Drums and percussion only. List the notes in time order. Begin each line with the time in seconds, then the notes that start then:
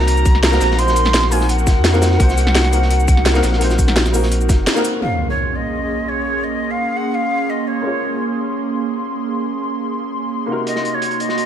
0.07 closed hi-hat
0.17 cabasa
0.25 kick, closed hi-hat, cabasa
0.35 snare
0.43 snare, closed hi-hat
0.53 snare, cabasa
0.61 snare, closed hi-hat, cabasa
0.71 snare
0.79 closed hi-hat
0.88 snare, cabasa
0.96 closed hi-hat, cabasa
1.05 snare, closed hi-hat
1.14 snare, closed hi-hat
1.22 snare
1.32 closed hi-hat, open hi-hat, cabasa
1.41 snare
1.49 closed hi-hat
1.59 cabasa
1.67 kick, snare, closed hi-hat, cabasa
1.84 snare, closed hi-hat
1.94 cabasa
2.02 snare, closed hi-hat, cabasa
2.11 snare
2.20 kick, closed hi-hat
2.29 snare, cabasa
2.38 closed hi-hat, cabasa
2.47 snare
2.55 snare, closed hi-hat
2.64 snare, closed hi-hat
2.73 closed hi-hat, cabasa
2.82 snare
2.91 closed hi-hat
3.00 cabasa
3.08 kick, closed hi-hat, cabasa
3.17 snare
3.26 snare, closed hi-hat
3.35 snare, cabasa
3.43 snare, closed hi-hat, cabasa
3.53 snare
3.61 closed hi-hat
3.70 snare, cabasa
3.79 kick, closed hi-hat, cabasa
3.88 snare, closed hi-hat
3.96 snare, closed hi-hat
4.06 snare, closed hi-hat, cabasa
4.14 closed hi-hat, open hi-hat, cabasa
4.23 snare
4.31 closed hi-hat
4.41 cabasa
4.49 kick, snare, closed hi-hat, cabasa
4.66 snare, closed hi-hat
4.76 cabasa
4.85 closed hi-hat, cabasa
10.67 closed hi-hat
10.76 snare
10.85 closed hi-hat
11.02 closed hi-hat
11.11 closed hi-hat
11.20 closed hi-hat
11.29 snare
11.38 closed hi-hat